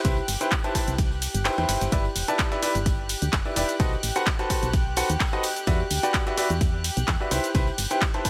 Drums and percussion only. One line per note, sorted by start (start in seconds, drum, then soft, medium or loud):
0.04 kick loud
0.04 closed hi-hat medium
0.04 ride medium
0.04 tambourine medium
0.04 cabasa soft
0.17 tambourine soft
0.28 open hi-hat loud
0.28 ride medium
0.28 tambourine loud
0.28 cabasa medium
0.41 closed hi-hat medium
0.41 tambourine soft
0.41 cabasa soft
0.51 kick loud
0.51 clap loud
0.51 closed hi-hat medium
0.51 ride medium
0.51 tambourine medium
0.51 cabasa soft
0.64 closed hi-hat soft
0.64 tambourine soft
0.75 kick medium
0.75 open hi-hat loud
0.75 ride medium
0.75 tambourine medium
0.75 cabasa medium
0.87 closed hi-hat medium
0.87 tambourine soft
0.87 cabasa soft
0.98 kick loud
0.98 closed hi-hat medium
0.98 ride medium
0.98 tambourine soft
0.98 cabasa soft
1.11 tambourine soft
1.22 open hi-hat loud
1.22 ride medium
1.22 tambourine medium
1.22 cabasa medium
1.33 closed hi-hat medium
1.33 tambourine soft
1.33 cabasa soft
1.45 snare loud
1.45 clap loud
1.45 closed hi-hat medium
1.45 ride medium
1.45 tambourine medium
1.45 cabasa soft
1.57 ride soft
1.57 tambourine soft
1.69 snare loud
1.69 open hi-hat loud
1.69 ride medium
1.69 tambourine loud
1.69 cabasa medium
1.81 snare soft
1.81 closed hi-hat medium
1.81 tambourine soft
1.81 cabasa soft
1.92 kick loud
1.92 closed hi-hat medium
1.92 ride medium
1.92 tambourine medium
1.92 cabasa soft
2.05 tambourine soft
2.16 open hi-hat loud
2.16 ride medium
2.16 tambourine loud
2.16 cabasa medium
2.28 closed hi-hat medium
2.28 tambourine soft
2.28 cabasa soft
2.39 kick loud
2.39 snare loud
2.39 clap loud
2.39 closed hi-hat medium
2.39 ride medium
2.39 tambourine medium
2.39 cabasa soft
2.52 snare medium
2.52 closed hi-hat soft
2.63 open hi-hat loud
2.63 ride medium
2.63 tambourine medium
2.63 cabasa medium
2.75 closed hi-hat medium
2.75 cabasa soft
2.86 kick loud
2.86 closed hi-hat medium
2.86 ride medium
2.86 tambourine medium
2.86 cabasa soft
3.09 open hi-hat loud
3.09 open hi-hat medium
3.09 ride medium
3.09 tambourine medium
3.09 cabasa medium
3.22 closed hi-hat medium
3.22 tambourine soft
3.22 cabasa soft
3.33 kick loud
3.33 snare loud
3.33 clap loud
3.33 closed hi-hat medium
3.33 ride medium
3.33 tambourine medium
3.33 cabasa soft
3.45 tambourine soft
3.56 open hi-hat loud
3.56 ride medium
3.56 tambourine loud
3.56 cabasa medium
3.69 snare soft
3.69 closed hi-hat medium
3.69 tambourine soft
3.69 cabasa soft
3.80 kick loud
3.80 closed hi-hat medium
3.80 ride medium
3.80 ride loud
3.80 tambourine medium
3.80 cabasa soft
3.93 tambourine soft
4.03 open hi-hat loud
4.03 ride medium
4.03 tambourine medium
4.03 cabasa medium
4.15 closed hi-hat medium
4.15 tambourine soft
4.15 cabasa soft
4.26 kick loud
4.26 snare loud
4.26 clap loud
4.26 closed hi-hat medium
4.26 ride medium
4.26 tambourine medium
4.26 cabasa soft
4.39 snare soft
4.39 closed hi-hat soft
4.50 kick medium
4.50 open hi-hat loud
4.50 ride medium
4.50 tambourine loud
4.50 cabasa medium
4.63 closed hi-hat medium
4.63 tambourine soft
4.63 cabasa soft
4.73 kick loud
4.73 closed hi-hat medium
4.73 ride medium
4.73 tambourine medium
4.73 cabasa soft
4.96 open hi-hat loud
4.96 ride medium
4.96 tambourine loud
4.96 cabasa medium
5.09 closed hi-hat medium
5.09 tambourine soft
5.09 cabasa soft
5.20 kick loud
5.20 snare loud
5.20 clap loud
5.20 closed hi-hat soft
5.20 ride loud
5.20 ride medium
5.20 tambourine medium
5.20 cabasa soft
5.33 ride soft
5.33 tambourine soft
5.43 open hi-hat loud
5.43 ride medium
5.43 tambourine loud
5.43 cabasa medium
5.56 snare soft
5.56 closed hi-hat medium
5.56 tambourine soft
5.56 cabasa soft
5.67 kick loud
5.67 closed hi-hat medium
5.67 ride medium
5.67 tambourine medium
5.67 cabasa soft
5.80 tambourine soft
5.90 open hi-hat loud
5.90 ride medium
5.90 tambourine loud
5.90 cabasa medium
6.03 closed hi-hat medium
6.03 tambourine soft
6.03 cabasa soft
6.14 kick loud
6.14 snare loud
6.14 clap loud
6.14 closed hi-hat medium
6.14 ride medium
6.14 tambourine medium
6.14 cabasa soft
6.27 snare medium
6.27 closed hi-hat soft
6.38 open hi-hat loud
6.38 ride medium
6.38 tambourine loud
6.38 cabasa medium
6.50 closed hi-hat medium
6.50 tambourine soft
6.50 cabasa soft
6.61 kick loud
6.61 closed hi-hat medium
6.61 ride medium
6.61 tambourine medium
6.61 cabasa soft
6.84 open hi-hat loud
6.84 open hi-hat medium
6.84 ride medium
6.84 tambourine medium
6.84 cabasa medium
6.97 closed hi-hat medium
6.97 tambourine soft
6.97 cabasa soft
7.07 kick loud
7.07 snare loud
7.07 clap loud
7.07 closed hi-hat soft
7.07 ride medium
7.07 tambourine medium
7.07 cabasa soft
7.21 tambourine soft
7.31 open hi-hat loud
7.31 ride medium
7.31 tambourine loud
7.31 cabasa medium
7.44 snare soft
7.44 closed hi-hat medium
7.44 tambourine soft
7.44 cabasa soft
7.55 kick loud
7.55 closed hi-hat medium
7.55 ride medium
7.55 tambourine medium
7.55 cabasa soft
7.67 tambourine soft
7.78 open hi-hat loud
7.78 ride medium
7.78 tambourine loud
7.78 cabasa medium
7.90 closed hi-hat medium
7.90 tambourine soft
7.90 cabasa soft
8.02 kick loud
8.02 snare loud
8.02 clap loud
8.02 closed hi-hat medium
8.02 ride medium
8.02 tambourine medium
8.02 cabasa soft
8.14 snare soft
8.14 closed hi-hat soft
8.25 kick medium
8.25 open hi-hat loud
8.25 ride medium
8.25 tambourine medium
8.25 cabasa medium